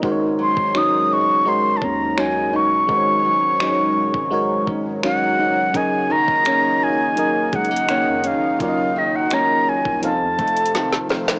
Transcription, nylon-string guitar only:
X:1
M:4/4
L:1/16
Q:1/4=84
K:Abmix
V:1 name="Nylon-string guitar"
A,,2 G,2 [G,DE]6 D2 [G,DE]2 E2 | A,,2 G,2 [G,DE]6 D2 [G,DE]2 E2 | G,,2 E,2 [E,B,D]6 A, B, [E,B,D]2 D2 | G,,2 E,2 [E,B,D]4 F,,2 =A,2 [E,A,C]2 C2 |]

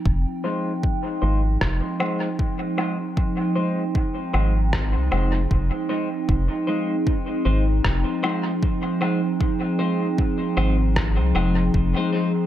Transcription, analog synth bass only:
X:1
M:4/4
L:1/16
Q:"Swing 16ths" 1/4=77
K:Fm
V:1 name="Analog synth bass" clef=bass
F,,, z4 z A,,,2 F,,, z6 z | z6 A,,,3 C,, F,,,2 F,,, z3 | F,,, z4 z A,,,2 F,,, z6 z | z6 A,,,3 C,, F,,,2 F,,, z3 |]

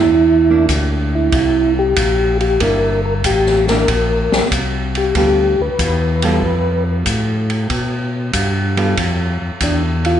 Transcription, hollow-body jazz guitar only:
X:1
M:4/4
L:1/8
Q:"Swing" 1/4=94
K:C
V:1 name="Hollow-body jazz guitar"
z [_B,DE]3 z4 | [_B,DE] z2 [B,DE] z4 | [G,B,FA] z2 [G,B,FA] z4 | z3 [G,B,FA] z4 |]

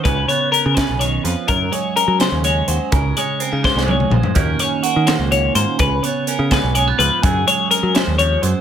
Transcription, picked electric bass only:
X:1
M:6/8
L:1/16
Q:3/8=84
K:Db
V:1 name="Picked electric bass" clef=bass
D,,2 z3 D,2 _C,,3 F,, z | G,,2 z3 G,2 E,,3 E,, z | D,,2 z3 D,2 C,,3 B,,, z | E,,2 z3 E,2 D,,3 A,, z |
D,,2 z3 D,2 _C,,3 D,, z | G,,2 z3 G,2 E,,3 G,, z |]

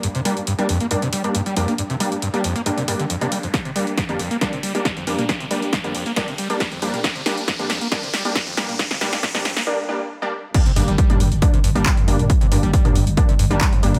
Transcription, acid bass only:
X:1
M:4/4
L:1/16
Q:1/4=137
K:Gm
V:1 name="Acid bass" clef=bass
G,, C, G, z G,, G, F,, B, G,, C, G, z G,, G, F,, B, | G,, C, G, z G,, G, F,, B, G,, C, G,, D, F,, C, G, F,, | G,, C, G, z G,, F,, F,, B, G,, C, G, z G,, F,, F,, B, | G,, C, G, z G,, F,, F,, B, G,, C, G, z G,, F,, F,, B, |
G,, C, G, z G,, F,, F,, B, G,, C, G, z G,, F,, F,, B, | G,, C, G, z G,, F,, F,, B, z8 | G,, C, G,, G, G, F,, G,, z G,, C, G,, G, G, F,, G,, z | G,, C, G,, G, G, F,, G,, z G,, C, G,, G, G, F,, G,, z |]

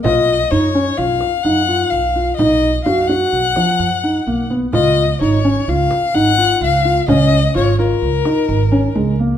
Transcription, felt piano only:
X:1
M:5/4
L:1/8
Q:1/4=128
K:Dbmix
V:1 name="Felt piano"
F2 E D F2 E F2 F | E2 G G2 F,2 E B, C | F2 E D F2 E F2 F | D2 F F2 E2 D A, B, |]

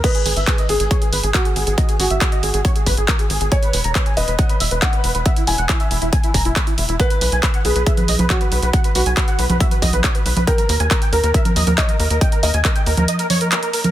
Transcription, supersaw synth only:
X:1
M:4/4
L:1/16
Q:1/4=138
K:G#m
V:1 name="Supersaw synth"
d G G e G d G G c G B G A G G G | d G G e G d G G c G B G A G G G | g B B a B g B B f B e B d B B B | e E E f E e E E g E a E b E E E |
f B B g B f B B e B d B c B B B | f B B g B f B B e B d B c B B B | =g A A ^g A =g A A e A d A c A A A | =g A A ^g A =g A A d A c A A A A A |]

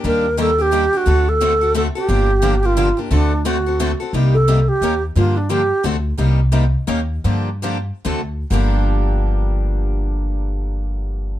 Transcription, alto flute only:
X:1
M:3/4
L:1/8
Q:"Swing" 1/4=176
K:Gm
V:1 name="Alto flute"
B2 A G2 ^F- | ^F A3 A G- | G3 F2 z | D2 ^F3 z |
z A2 G2 z | F D G2 z2 | z6 | z6 |
z6 | z6 |]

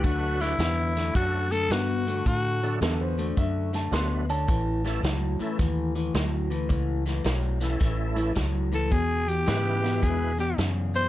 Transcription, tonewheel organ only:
X:1
M:4/4
L:1/8
Q:"Swing" 1/4=108
K:A
V:1 name="Tonewheel organ"
[F,A,DFB]2 z2 [F,A,DFA] z3 | z [F,A,DFA] z4 [F,A,DFB] z | z [E,A,CEA] z [E,A,CEA] z4 | z3 [E,A,CEA]3 z2 |
z2 [E,G,B,EB]3 z3 |]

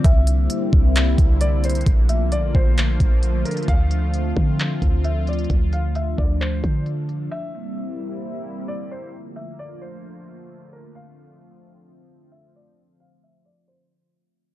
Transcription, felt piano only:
X:1
M:4/4
L:1/8
Q:1/4=132
K:Dm
V:1 name="Felt piano"
e6 d c | z e d c4 B | f6 e d | z f e d c2 z2 |
e6 d c | z e d c4 B | f6 e d | z f e d c2 z2 |]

